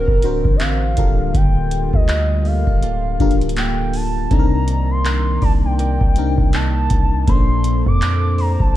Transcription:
Already playing: D3 C4 D4 F#4 A#4 C5
0.08 D1, kick
0.22 D3 D4 F#4 A#4 C5, closed hi-hat
0.45 A1, kick
0.56 E5, closed hi-hat
0.60 C4 F5, clap
0.97 D1 D3 G3 A#3 D4 F4 G4 A4 A#4, kick, closed hi-hat
1.34 D1 D3 G5, kick, closed hi-hat
1.71 closed hi-hat
1.93 D2 D#5, kick
2.08 F4, clap, closed hi-hat
2.45 G4 F5, open hi-hat
2.67 D1 A4, kick
2.83 A#3 F4 A4, closed hi-hat
3.20 D1 D3 D4 F4 G4 A4 A#4 F5, kick, closed hi-hat
3.31 closed hi-hat
3.41 closed hi-hat
3.49 closed hi-hat
3.56 A#3 G5, clap, closed hi-hat
3.93 A5, open hi-hat
4.31 C2 C3 D#3 C4 D4 D#4 A4 D5 A#5, kick, closed hi-hat
4.39 A#4
4.68 closed hi-hat
4.91 C6
5.05 A#4, clap, closed hi-hat
5.42 C2 D5 A5, kick, open hi-hat
5.65 G5
5.79 D#4 A#4 D5, closed hi-hat
6.01 C2, kick
6.16 C3 C4 D4 D#4 A#4, closed hi-hat
6.38 C2, kick
6.53 D#4 A5, clap, closed hi-hat
6.90 C2, kick, closed hi-hat
7.27 A#1 A#2 A#3 C#4 A4 C5 D5 C6, kick, closed hi-hat
7.35 D4
7.64 closed hi-hat
7.86 F2 D6, kick
8.01 A4, clap, closed hi-hat
8.38 C5 A#5, open hi-hat
8.60 A#1 A5, kick

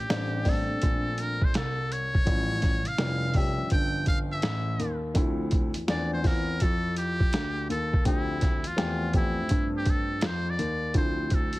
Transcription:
Already playing: G4
0.09 A1 G3 A3 C4 D4, snare, closed hi-hat
0.44 G3 A3 C4 D4, kick, snare, open hi-hat
0.49 A4
0.70 A#1
0.82 A#1, kick, closed hi-hat
1.18 A#4, closed hi-hat
1.42 C5, kick
1.54 C2 A4, snare, closed hi-hat
1.92 C#5, closed hi-hat
2.15 kick
2.25 A1 F3 G3 C#4 E4, kick, closed hi-hat
2.62 kick, snare, closed hi-hat
2.85 F1 F5, closed hi-hat
2.98 F1 F3 G3 C#4 E4, snare, closed hi-hat
3.34 F3 G3 C#4 G4 E5, kick, open hi-hat
3.58 G1
3.70 G1 G5, kick, closed hi-hat
4.06 F5, kick, closed hi-hat
4.32 E5
4.42 A1, snare, closed hi-hat
4.79 D#2, closed hi-hat
5.14 D2 F3 A3 C4 E4, kick, closed hi-hat
5.51 kick, closed hi-hat
5.74 E2, closed hi-hat
5.87 E2 F3 A3 C4 D4 D5, snare, closed hi-hat
6.13 C5
6.23 C4 E4 F4 A#4, kick, snare, open hi-hat
6.60 F2 A4, kick, closed hi-hat
6.96 G4, closed hi-hat
7.20 kick
7.33 D2, snare, closed hi-hat
7.69 D#2 A4, closed hi-hat
7.93 kick
8.05 D2 F3 A3 C4 E4 G4, kick, closed hi-hat
8.41 kick, snare, closed hi-hat
8.64 E2 F4, closed hi-hat
8.76 E2 F3 A3 C4 G4, snare, closed hi-hat
9.13 F3 A3 C4 E4 G4, kick, closed hi-hat
9.39 G2
9.49 G2, kick, closed hi-hat
9.77 G4
9.86 kick, closed hi-hat
9.90 A4
10.21 F2, snare, closed hi-hat
10.26 C5
10.50 D5
10.58 D#2, closed hi-hat
10.94 D2 F3 A3 C4 E4 C5, kick, closed hi-hat
11.30 kick, closed hi-hat
11.34 A4
11.53 F2, closed hi-hat

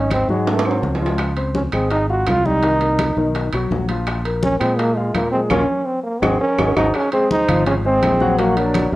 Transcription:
Already playing: G#1 D#4 D#5
0.10 C4, high bongo, high conga, high timbale, claves
0.28 G#2 F#3 G#3 F#4, high bongo, high conga
0.47 A3, high bongo, high conga, high timbale
0.59 high timbale
0.65 F#3 C4 C5, high conga, claves
0.71 high timbale
0.82 C#2, high bongo, low bongo, high conga
0.95 low timbale
1.01 F3 F4, high bongo
1.06 low timbale
1.18 high bongo, high conga, high timbale, claves
1.37 C4 C5, high bongo, high conga, high timbale
1.55 C#4, high bongo, high conga
1.72 G#1 G#3 C4 G#4, high bongo, high conga, high timbale, claves
1.90 D#4, high bongo, high conga, high timbale
2.09 F4 F#4 F5, high conga
2.26 C2 F4, high bongo, low bongo, high conga, high timbale, low timbale, claves
2.45 G3 D#4 G4, high bongo, high conga
2.63 D#3 D#4, high bongo, high conga, high timbale
2.81 A#3 A#4, high bongo, high conga, high timbale
2.99 high bongo, high conga, high timbale, claves
3.17 B1 D#3 D#4, high bongo, high conga
3.35 high bongo, high conga, high timbale
3.53 B1 F#3 F#4, high conga, high timbale, claves
3.71 A#1, high bongo, low bongo, high conga
3.89 F3 F4, high bongo, high timbale
4.07 high bongo, high conga, high timbale, claves
4.25 A#3 A#4, high bongo, high conga, high timbale
4.43 C#4, high bongo, high conga
4.60 A#2 G#3 C4 G#4, high bongo, high conga, high timbale, claves
4.78 A#3, high bongo, high conga, high timbale
4.96 G#3 F4 F5, high conga
5.14 A#2 A#3, high bongo, low bongo, high conga, high timbale, claves
5.31 G#3 C4 G#4, high bongo
5.50 A#1 A#3 C#4 F4, high bongo, high conga, high timbale, claves
5.85 C4
6.03 A#3
6.21 G#1 C4 D#4 F#4 G#4, high bongo, high conga, high timbale, claves
6.41 C#4 A#4
6.58 G#1 D#4 F#4 G#4, high bongo, high conga, high timbale, claves
6.77 G#1 D#4 F#4 G#4 C5, high bongo, high conga, high timbale, claves
6.94 C#4 G#4, high bongo, high conga, high timbale, claves
7.12 G#3 C4 G#4 C5, high bongo, high conga, high timbale
7.31 D#4 C5, high bongo, high conga
7.49 G#1 F3 F4 F5, high bongo, high conga, low conga, high timbale, claves
7.67 C#4 G#4, high bongo, high timbale
7.85 G#3 C4 G#4 C5, high conga
8.02 A#1, high bongo, low bongo, high conga, high timbale, low timbale, claves
8.20 F#3 F#4 F#5, high bongo, high conga
8.39 F#3 A#3 F#4 F#5, high bongo, high conga, high timbale
8.57 F#3 A#3 D4 A#4 D5, high bongo, high conga, high timbale
8.74 high bongo, high conga, high timbale, claves
8.92 F#2

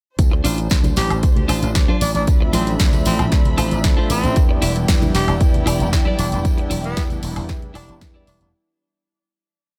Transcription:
0.19 D2 D4 C5, kick, closed hi-hat, tambourine
0.31 muted clean electric guitar stroke
0.44 A1 D4 F4 C5, open hi-hat, tambourine
0.58 closed hi-hat, tambourine
0.70 D2, muted clean electric guitar stroke, kick, snare, closed hi-hat, tambourine
0.84 closed hi-hat, tambourine, high conga, low conga
0.96 A1 G4, snare, open hi-hat, tambourine
1.10 A1, closed hi-hat, tambourine, high woodblock
1.22 muted clean electric guitar stroke, kick, closed hi-hat, tambourine
1.36 closed hi-hat, low conga
1.48 A1 D4 F4 C5, open hi-hat, tambourine, high woodblock
1.62 A1, closed hi-hat, tambourine
1.75 kick, snare, closed hi-hat, tambourine
1.88 D4 F4 C5, high conga
2.01 A1 D4, open hi-hat, tambourine
2.14 A1 D4, muted clean electric guitar stroke, closed hi-hat, tambourine
2.26 D2 F3 A3 C4 D4 E5 B5, kick, closed hi-hat, tambourine
2.40 muted clean electric guitar stroke
2.53 A1 C4 D4 F4 C5, open hi-hat, tambourine, high conga
2.67 closed hi-hat, tambourine
2.79 D2, muted clean electric guitar stroke, kick, snare, closed hi-hat, tambourine
2.93 closed hi-hat, tambourine, low conga
3.05 A1 C4, open hi-hat, tambourine
3.19 A1, closed hi-hat, tambourine, high woodblock
3.31 D2, muted clean electric guitar stroke, kick, snare, closed hi-hat, tambourine
3.45 closed hi-hat, low conga
3.57 A1 D4 F4 C5, open hi-hat, tambourine, high woodblock
3.71 A1, closed hi-hat, tambourine
3.84 D2 F3 A3 C4 D4 E5, kick, snare, closed hi-hat, tambourine
3.97 D4 F4 C5
4.10 A1 C4, open hi-hat, tambourine
4.23 A1, muted clean electric guitar stroke, closed hi-hat, tambourine
4.36 E2 E3 G3 B3 D4 E4 D5 G5, kick, closed hi-hat, tambourine
4.49 muted clean electric guitar stroke
4.62 E1 E4 G4 E5, open hi-hat, tambourine
4.76 closed hi-hat, tambourine
4.88 E2, muted clean electric guitar stroke, kick, snare, closed hi-hat, tambourine
5.02 closed hi-hat, tambourine, high conga, low conga
5.15 E1 G4, snare, open hi-hat, tambourine
5.28 E1, closed hi-hat, tambourine, high woodblock
5.40 E2, muted clean electric guitar stroke, kick, closed hi-hat, tambourine
5.54 closed hi-hat, low conga
5.66 E1 E3 G3 B3 D4 E4 G4 D5, open hi-hat, tambourine, high woodblock
5.80 E1, closed hi-hat, tambourine
5.93 E2, kick, snare, closed hi-hat, tambourine
6.05 E4 G4 D5, high conga
6.19 E1 D4, open hi-hat, tambourine
6.31 E1 D4, muted clean electric guitar stroke, closed hi-hat, tambourine
6.44 E2 E3 G3 B3 D4 E4, kick, closed hi-hat, tambourine
6.58 muted clean electric guitar stroke, closed hi-hat
6.70 E1 E4 G4 D5, open hi-hat, tambourine, high conga
6.84 B3, closed hi-hat, tambourine
6.96 E2, muted clean electric guitar stroke, kick, snare, closed hi-hat, tambourine
7.10 closed hi-hat, tambourine, low conga
7.23 E1, open hi-hat, tambourine
7.36 E1, open hi-hat, high woodblock
7.48 E2, muted clean electric guitar stroke, kick, snare, closed hi-hat, tambourine
7.62 closed hi-hat, low conga
7.74 E1 D4 E4 G4 D5, open hi-hat, tambourine, high woodblock
7.89 E1, closed hi-hat, tambourine
8.01 E2 E3 G3 B3 D4 E4, kick, snare, closed hi-hat, tambourine
8.14 E4 G4 D5
8.27 E1 D4, open hi-hat, tambourine
8.40 E1 D4, muted clean electric guitar stroke, closed hi-hat

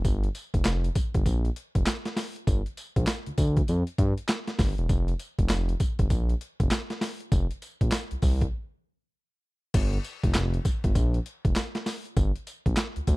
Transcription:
0.05 G1, kick, closed hi-hat, tambourine
0.23 closed hi-hat
0.35 closed hi-hat, tambourine
0.54 F1, kick, closed hi-hat
0.65 F1, snare, clap, closed hi-hat, tambourine
0.84 closed hi-hat
0.95 kick, closed hi-hat, tambourine
1.14 G1, kick, closed hi-hat
1.26 A#1, kick, closed hi-hat, tambourine
1.45 closed hi-hat
1.56 closed hi-hat
1.75 F1, kick, closed hi-hat
1.86 snare, clap, closed hi-hat, tambourine
2.05 snare, closed hi-hat
2.17 snare, open hi-hat, tambourine
2.36 closed hi-hat
2.47 G1, kick, closed hi-hat, tambourine
2.66 closed hi-hat
2.77 closed hi-hat, tambourine
2.96 A#1, kick, closed hi-hat
3.07 snare, clap, closed hi-hat, tambourine
3.26 D2, closed hi-hat
3.38 D2, kick, closed hi-hat, tambourine
3.57 kick, closed hi-hat
3.68 F2, closed hi-hat, tambourine
3.87 closed hi-hat
3.98 G2, kick, closed hi-hat
4.18 closed hi-hat
4.28 snare, clap, closed hi-hat, tambourine
4.47 snare, closed hi-hat
4.59 G1, kick, snare, open hi-hat, tambourine
4.78 E1, closed hi-hat
4.89 F1, kick, closed hi-hat, tambourine
5.08 closed hi-hat
5.19 closed hi-hat, tambourine
5.39 F1, kick, closed hi-hat
5.49 F1, snare, clap, closed hi-hat, tambourine
5.69 closed hi-hat
5.80 kick, closed hi-hat, tambourine
5.99 G1, kick, closed hi-hat
6.10 A#1, kick, closed hi-hat, tambourine
6.29 closed hi-hat
6.41 closed hi-hat
6.60 F1, kick, closed hi-hat
6.71 snare, clap, closed hi-hat, tambourine
6.90 snare, closed hi-hat
7.01 snare, open hi-hat, tambourine
7.20 closed hi-hat
7.32 F1, kick, closed hi-hat, tambourine
7.51 closed hi-hat
7.62 closed hi-hat, tambourine
7.81 A#1, kick, closed hi-hat
7.92 snare, clap, closed hi-hat, tambourine
8.11 C2, closed hi-hat
8.22 C2, kick, open hi-hat, tambourine
8.41 kick, closed hi-hat
9.74 G1, kick, closed hi-hat, crash, tambourine
9.93 closed hi-hat
10.04 closed hi-hat, tambourine
10.23 F1, kick, closed hi-hat
10.34 F1, snare, clap, closed hi-hat, tambourine
10.54 closed hi-hat
10.65 kick, closed hi-hat, tambourine
10.84 G1, kick, closed hi-hat
10.95 A#1, kick, closed hi-hat, tambourine
11.14 closed hi-hat
11.26 closed hi-hat
11.45 F1, kick, closed hi-hat
11.56 snare, clap, closed hi-hat, tambourine
11.75 snare, closed hi-hat
11.86 snare, open hi-hat, tambourine
12.06 closed hi-hat
12.17 G1, kick, closed hi-hat, tambourine
12.36 closed hi-hat
12.47 closed hi-hat, tambourine
12.66 A#1, kick, closed hi-hat
12.77 snare, clap, closed hi-hat, tambourine
12.96 D2, closed hi-hat
13.07 D2, kick, closed hi-hat, tambourine

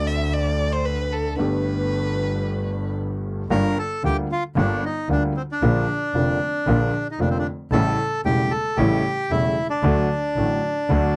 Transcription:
Already playing: D2 D3 A3 C4 F#4
0.07 E5
0.34 D5
0.73 C5
0.86 B4
1.13 A4
1.36 G1 G2 D3 A3 B3 B4
1.41 G4
3.50 G1 G2 D3 G3 A#3 F4 A#4
3.79 A4
4.04 D2 D3 G3 A#3 F4 G4
4.32 F4
4.56 G1 G2 D3 G3 A#3 D4 F4
4.85 D#4
5.08 D2 D3 G3 A#3 D4 F4
5.37 C4
5.52 D4
5.61 A#1 A#2 D3 F3 A#3 F4
6.14 F1 F2 D3 F3 A#3 F4
6.67 A#1 A#2 D3 F3 A#3 F4
7.11 D#4
7.19 F1 F2 D3 F3 A#3 D4 F4
7.30 C4
7.39 D4
7.71 A1 A2 C#3 G3 A3 E4 A4
8.25 E1 E2 C#3 G3 A3 E4 G4
8.51 A4
8.77 A1 A2 C#3 G3 A3 E4 G4
9.31 E1 E2 C#3 G3 A3 E4
9.70 D4
9.83 D2 D3 F#3 A3 F#4
10.36 A1 A2 D3 F#3 A3 F#4
10.89 D2 D3 F#3 A3 F#4

